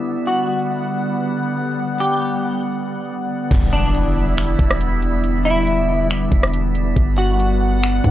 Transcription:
Already playing: D3 G3 B3
0.06 G3 B3 F#5
0.27 F#4
2.00 G4
3.51 E1 D3 G3 B3 D4 E4 E5, kick, closed hi-hat, crash, impact
3.73 D4
3.95 closed hi-hat
4.37 finger snap, closed hi-hat
4.59 E1, kick, closed hi-hat
4.71 cross-stick
4.81 closed hi-hat
5.02 closed hi-hat
5.24 closed hi-hat
5.45 E4
5.67 closed hi-hat
6.10 finger snap, closed hi-hat
6.32 E1, kick, closed hi-hat
6.43 cross-stick
6.53 closed hi-hat
6.75 closed hi-hat
6.96 G1 B3 F#5, kick, closed hi-hat
7.18 F#4
7.40 closed hi-hat
7.83 finger snap, closed hi-hat
8.04 G2, kick, closed hi-hat

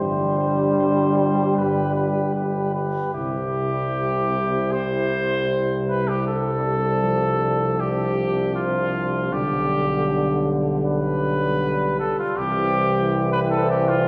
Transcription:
Already playing: G4
0.00 G1 G3 D4 C5
0.37 G4 C5
0.77 G1 G4 C5
1.17 G4 C5
1.56 G1 G4 B4
1.95 G4 B4
2.35 G1 G4 B4
2.74 G4 B4
3.14 C2 C3 G3 E4 G4
4.72 C5
5.88 B4
6.08 G4
6.26 D4 A4
7.03 F3
7.80 G4
8.56 F4
9.32 B1 D3 G3 G4
10.86 B4
11.99 A4
12.19 F4
12.36 C2 E3 C4 G4
13.32 B4
13.51 A4
13.70 G4
13.89 F4

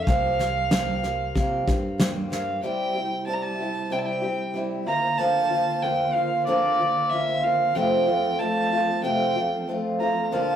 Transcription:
0.04 C2 C3 F5, kick, snare
0.08 F3 A#3 C4 G4
0.39 A#3 C4 G4, snare
0.71 F3 A#3 C4 G4, snare
1.03 A#3 C4 G4, snare
1.35 C3 F3 A#3 C4 G4, kick, snare
1.67 G2 A#3 C4 G4, kick, snare
1.98 F3 A#3 C4 G4, snare
2.30 A#3 C4 G4 F5, snare
2.63 C3 G3 C4 E4 G4 G5
2.94 C4 E4 G4
3.26 G3 C4 E4 G4 A5
3.34 A#5
3.42 A5
3.58 C4 E4 G4
3.90 C3 G3 C4 E4 G4 G5
3.99 A5
4.05 G5
4.22 C4 E4 G4
4.54 G3 C4 E4 G4
4.86 D3 A#3 C4 F4 C5 A#5
5.18 D3 F3 A#3 C4 F4 A5
5.49 A#3 C4 F4
5.82 F3 A#3 C4 F4 G5
6.13 C4 F4 F5
6.17 A#3
6.46 D3 F3 A#3 C4 F4 D5
6.79 A#3 C4 F4
7.10 F3 A#3 C4 E5
7.14 F4
7.43 A#3 C4 F4 F5
7.75 F2 C3 F3 A3 C4 F4 A4 G5
8.07 F3 A3 C4 F4
8.39 F3 A3 C4 F4 A5
8.71 F3 A3 C4 F4
9.02 F2 C3 F3 A3 C4 F4 G5
9.35 F3 A3 C4 F4
9.68 F3 A3 C4 F4
10.00 F3 A3 C4 F4 A#5
10.24 A#5
10.31 A#2 D3 F3 A#3 C4 D4 F4 A#4 A5

